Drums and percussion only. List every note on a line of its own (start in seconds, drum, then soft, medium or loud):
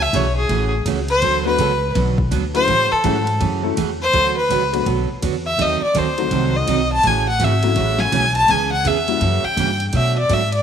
0.13 kick soft
0.13 hi-hat pedal medium
0.13 ride medium
0.49 kick soft
0.49 ride medium
0.86 kick soft
0.86 hi-hat pedal medium
0.86 ride medium
1.08 ride soft
1.22 kick soft
1.22 ride medium
1.58 kick soft
1.58 hi-hat pedal medium
1.58 ride medium
1.95 kick soft
1.95 snare soft
1.95 ride medium
2.18 kick medium
2.31 kick soft
2.31 hi-hat pedal medium
2.31 ride medium
2.55 ride soft
2.68 kick soft
2.68 ride medium
3.04 kick soft
3.04 hi-hat pedal soft
3.04 ride medium
3.27 ride soft
3.41 kick soft
3.41 ride medium
3.77 kick soft
3.77 hi-hat pedal medium
3.77 ride medium
4.13 kick soft
4.13 ride medium
4.50 kick soft
4.50 hi-hat pedal medium
4.50 ride medium
4.74 ride medium
4.86 kick soft
4.86 ride medium
5.22 kick soft
5.22 hi-hat pedal medium
5.22 ride medium
5.59 kick soft
5.59 ride medium
5.95 kick soft
5.95 hi-hat pedal medium
5.95 ride medium
6.18 ride soft
6.31 kick soft
6.31 ride medium
6.67 kick soft
6.67 hi-hat pedal medium
6.67 ride medium
7.03 kick soft
7.03 ride medium
7.40 kick soft
7.40 hi-hat pedal medium
7.40 ride medium
7.63 ride medium
7.76 kick soft
7.76 ride medium
7.99 snare soft
8.12 kick soft
8.12 hi-hat pedal medium
8.12 ride medium
8.35 ride soft
8.48 kick soft
8.48 ride medium
8.85 kick soft
8.85 hi-hat pedal medium
8.85 ride medium
9.08 ride soft
9.21 kick soft
9.21 ride medium
9.57 kick soft
9.57 hi-hat pedal medium
9.57 ride medium
9.80 ride medium
9.93 kick soft
9.93 ride medium
10.29 kick soft
10.29 hi-hat pedal medium
10.29 ride medium
10.52 ride soft